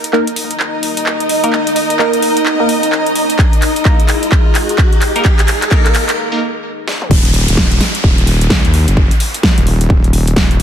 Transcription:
Already playing: D#4 A#4 D#5, riser
0.04 closed hi-hat
0.13 A#3 D#4 A#4, clap
0.25 D#5, closed hi-hat
0.36 open hi-hat
0.42 A#5
0.51 closed hi-hat
0.60 clap
0.83 open hi-hat
0.97 closed hi-hat
1.06 clap
1.20 closed hi-hat
1.29 open hi-hat
1.44 A#3 D#4 A#4, closed hi-hat
1.53 clap
1.67 closed hi-hat
1.76 open hi-hat
1.90 closed hi-hat
1.99 A#3 D#4 A#4, clap
2.13 closed hi-hat
2.22 open hi-hat
2.37 closed hi-hat
2.46 clap
2.60 A#3 D#4 A#4
2.69 open hi-hat
2.83 closed hi-hat
2.92 clap
3.06 closed hi-hat
3.15 open hi-hat
3.30 closed hi-hat
3.39 G#4, kick, clap
3.53 closed hi-hat
3.62 clap, open hi-hat
3.76 closed hi-hat
3.85 A#3 D#4 A#4, kick, clap
4.00 closed hi-hat
4.09 clap, open hi-hat
4.23 closed hi-hat
4.32 kick, clap
4.55 clap, open hi-hat
4.69 closed hi-hat
4.78 kick, clap
4.93 closed hi-hat
5.01 clap, open hi-hat
5.16 A#3 D#4 A#4, closed hi-hat
5.25 kick, clap
5.39 clap, closed hi-hat
5.48 clap, open hi-hat
5.62 clap, closed hi-hat
5.71 A#3 D#4 A#4, kick, clap
5.86 clap, closed hi-hat
5.95 clap, open hi-hat
6.09 clap, closed hi-hat
6.32 A#3 D#4 A#4
6.88 snare
7.02 mid tom
7.11 D#1, kick, crash, downlifter
7.25 closed hi-hat
7.34 open hi-hat
7.48 D#1, closed hi-hat
7.57 kick, snare
7.72 closed hi-hat
7.81 snare, open hi-hat
7.95 closed hi-hat
8.04 D#1, kick
8.18 closed hi-hat
8.27 open hi-hat
8.41 closed hi-hat
8.50 C#2, kick, snare
8.65 D#2, closed hi-hat
8.74 open hi-hat
8.88 F#1, closed hi-hat
8.97 kick
9.11 closed hi-hat
9.20 open hi-hat
9.34 closed hi-hat
9.43 kick, snare
9.58 D#1, closed hi-hat
9.67 open hi-hat
9.81 closed hi-hat
9.90 D#1, kick
10.04 closed hi-hat
10.13 open hi-hat
10.28 closed hi-hat
10.36 D#1, kick, snare
10.51 closed hi-hat

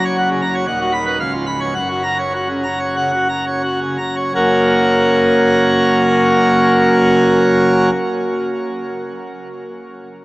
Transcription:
Already playing: F#1 F#2
0.05 C#5
0.17 F#4
0.30 C#3
0.42 A#5
0.54 C#5
0.67 D#1 D#2 F#5
0.80 F#4
0.93 B5
1.06 B4
1.19 C#1 C#2 F5
1.33 F4
1.46 B5
1.60 C#5
1.74 F#1 F#2 F#5
1.89 F#4
2.03 A#5
2.18 C#5
2.34 F#4
2.49 C#3
2.64 A#5
2.79 C#5
2.96 C#3 F#5
3.12 F#4
3.29 A#5
3.46 C#5
3.63 F#4
3.81 C#3
3.98 A#5
4.16 C#5
4.35 F#1 F#2 C#3 A#3 C#4 F#4 A#4

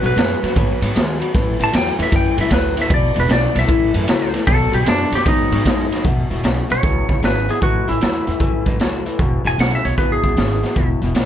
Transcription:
0.01 B1 B2 F#3, ride
0.06 B4
0.16 F#2 B2 G#3, snare, ride
0.42 F#2 B2 F#3, snare, ride
0.55 G#2 B2 F#3, kick, snare, ride
0.81 G#2 B2 F#3, ride
0.94 D#2 B2 G#3, snare, ride
1.20 B2 F#3, ride
1.34 A1 A2 E3, kick, snare, ride
1.59 A1 A2 E3, ride
1.64 A5
1.72 E2 A2 F#3, snare, ride
1.76 G5
1.98 E2 A2 E3, snare, ride
2.03 E5
2.12 F#2 A2 E3 G5, kick, snare, ride
2.37 F#2 A2 E3 E5, ride
2.50 D2 A2 F#3 B4, kick, snare, ride
2.76 A2 E3, snare, ride
2.82 E5
2.89 E1 E2 B2, kick, ride
2.94 D5
3.15 E1 E2 B2, ride
3.20 B4
3.28 B1 E2 C#3, snare, ride
3.33 D5
3.54 B1 E2 B2, snare, ride
3.59 E5
3.67 A1 A2 E3, kick, ride
3.94 F#2 A2 E3, ride
4.08 C#2 A2 F#3, snare, ride
4.33 A2 E3, snare, ride
4.47 B1 B2 F#3 A4, kick, snare, ride
4.71 B1 B2 F#3 G4, ride
4.85 F#2 B2 G#3 D4, snare, ride
5.12 F#2 B2 F#3 G4, snare, ride
5.25 G#2 B2 F#3 D#4, kick, snare, ride
5.52 G#2 B2 F#3, ride
5.65 F#2 B2 G#3, kick, snare, ride
5.91 B2 F#3, snare, ride
6.05 E1 E2 B2, kick, closed hi-hat
6.30 E1 E2 B2, closed hi-hat
6.43 B1 E2 C#3, snare, closed hi-hat
6.69 B1 E2 B2 C#5, closed hi-hat
6.83 C#2 E2 B2, kick, closed hi-hat
7.09 C#2 E2 B2, kick, closed hi-hat
7.22 G#1 E2 C#3 B4, snare, closed hi-hat
7.49 E2 B2 G#4, closed hi-hat
7.61 A1 A2 E3 F#4, kick, closed hi-hat
7.87 A1 A2 E3 E4, closed hi-hat
8.01 E2 A2 F#3, snare, closed hi-hat
8.27 E2 A2 E3, closed hi-hat
8.40 F#2 A2 E3, kick, closed hi-hat
8.66 F#2 A2 E3, kick, closed hi-hat
8.80 C#2 A2 F#3, snare, closed hi-hat
9.06 A2 E3, closed hi-hat
9.19 E1 E2 B2, kick, closed hi-hat
9.45 E1 E2 B2 G#5, closed hi-hat
9.58 B1 E2 C#3 F#5, snare, closed hi-hat
9.75 E5
9.85 B1 E2 B2 C#5, closed hi-hat
9.97 C#2 E2 B2 B4, kick, closed hi-hat
10.12 G#4
10.24 C#2 E2 B2, kick, closed hi-hat
10.37 G#1 E2 C#3, snare, closed hi-hat
10.63 E2 B2, snare, closed hi-hat
10.76 E1 E2 B2, kick, closed hi-hat
11.02 E1 E2 B2, closed hi-hat
11.14 B1 E2 C#3, snare, closed hi-hat

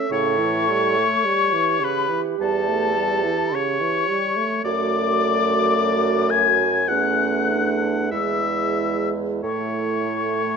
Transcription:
Already playing: A4 E5
0.10 A2 C#3 C#5 C#6
0.39 E3
0.69 G3
0.97 A3
1.25 G3 G4
1.53 E3
1.80 C#3 B5
1.85 B4
2.09 E3
2.38 E2 G3 A4 A5
2.68 A3
2.95 G3
3.24 E3
3.53 C#3 C#5 C#6
3.81 E3
4.09 G3
4.36 A3
4.64 F#2 A3 F#4 D5 D6
6.30 G#5 G#6
6.88 E2 A3 C#4 F#5 F#6
7.50 D4
8.11 E2 G#3 E4 E5 E6
9.43 A2 A3 E4 C#5 C#6

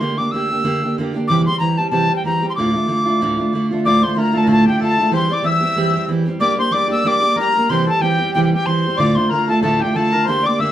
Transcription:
0.00 D3 A#3 D4 G4 C6
0.17 A#3 D4 G4 D6
0.31 D3 A#3 D4 E6
0.36 G4
0.51 A#3 D4 G4
0.64 D3 A#3 D4 G4
0.83 A#3 D4 G4
0.98 D3 A#3 D4 G4
1.14 A#3 D4 G4
1.28 C3 E3 G3 G4 D6
1.32 C4
1.46 C4 G4 C6
1.51 G3
1.60 E3 G3 C4 G4 A#5
1.78 G3 C4 G4 A5
1.91 C3 E3 G3 C4 G4 A5
2.09 G3 C4 G4
2.16 G5
2.24 E3 G3 C4 G4 A#5
2.42 G3 C4 G4
2.50 C6
2.56 D2 A2 D3 A3 D4 F4 D6
2.73 D3 A3 D4 F4
2.87 D3 A3 D4 F4
3.05 D3 A3 D4 F4
3.21 D2 A2 D3 A3 D4 F4
3.37 D3 A3 D4 F4
3.53 D3 A3 D4 F4
3.71 D3 A3 D4 F4
3.85 D2 A2 D3 A3 D4 F4 D5 D6
4.02 D3 A3 D4 F4 C5 C6
4.16 D3 A3 D4 F4 A#4 A#5
4.33 D3 A3 D4 F4 A4
4.38 A5
4.43 D2 A2 A4 A#4
4.47 D3 A3 D4 F4
4.51 A5
4.64 D4 F4 G4
4.68 D3 A3 G5
4.79 D3 A3 D4 F4 A4 A5
4.98 D3 A3 D4 F4
5.11 E3 G3 C4 G4 C5
5.16 C6
5.29 G3 C4 G4 D5
5.33 D6
5.43 E3 G3 C4 G4 E5 E6
5.61 G3 C4 G4
5.76 E3 G3 C4 G4
5.94 G3 C4 G4
6.08 E3 G3 C4 G4
6.25 G3 C4 G4
6.40 G3 A#3 D4 G4 D5 D6
6.57 A#3 D4 G4 C5 C6
6.71 G3 A#3 D4 G4 D5 D6
6.88 A#3 D4 G4 E6
7.04 G3 A#3 D4 G4 D5 D6
7.21 A#3 D4 G4
7.36 G3 A#3 D4 G4 A#4
7.40 A#5
7.55 A#3 D4 G4
7.69 C3 E3 G3 C4 G4 C5 C6
7.86 G3 C4 G4 A4 A5
8.00 E3 G3 C4 G4 G5
8.19 G3 C4 G4
8.34 C3 E3 G3 C4 G4 G5
8.43 G5
8.52 G3 C4 G4 G5
8.66 E3 G3 C4 G4 C5 C6
8.86 G3 C4 G4
8.97 D2 A2 D3 A3 D4 F4 D5 D6
9.15 A3 D4 F4 C5 C6
9.20 D3
9.29 D3 A3 D4 A#4 A#5
9.34 F4
9.47 D4 F4 A4 A5
9.51 D3 A3
9.61 D2 A2 D3 A3 D4 F4 A4 A5
9.80 D4 F4 G4 G5
9.84 D3 A3
9.94 D3 A3 D4 F4 A4 A5
10.12 D3 A3 D4 F4 A#4
10.25 D3 A#3 D4 C5 C6
10.29 G4
10.43 G4 D5 D6
10.47 A#3 D4
10.59 D3 A#3 D4 G4 E5 E6

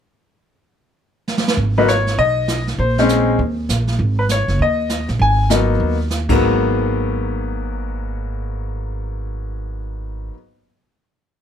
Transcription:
1.28 snare
1.38 snare
1.48 snare
1.57 G#1, brush sweep, kick
1.78 F#3 A#3 B3 D#4 B4
1.88 C#5, snare, hi-hat pedal
2.07 snare
2.18 B1 D#5, brush sweep, kick
2.48 snare, hi-hat pedal
2.67 snare
2.78 A#1 C5, brush sweep, kick
2.98 G#3 C4 C#4 D#4, snare
3.09 snare, hi-hat pedal
3.39 D#2, brush sweep, kick
3.69 A#1, snare, hi-hat pedal
3.87 snare
3.99 G#1, brush sweep, kick
4.19 B4
4.29 C#5, snare, hi-hat pedal
4.48 F#1, snare
4.59 D#2 D#5, brush sweep, kick
4.89 snare, hi-hat pedal
5.08 A#1, snare
5.19 G#1 G#5, brush sweep, kick
5.50 F#3 A#3 B3 D#4, snare, hi-hat pedal
5.80 D#2, brush sweep, kick
6.10 snare, hi-hat pedal
6.29 G#1 G#2 F#3 A#3 B3, kick, crash

